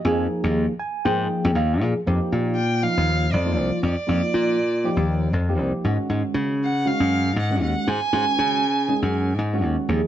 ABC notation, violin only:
X:1
M:4/4
L:1/8
Q:"Swing 16ths" 1/4=119
K:Fm
V:1 name="Violin"
z8 | [K:Fphr] z2 =g f2 =d2 d- | =d4- d z3 | z2 g f2 g g a- |
a4- a z3 |]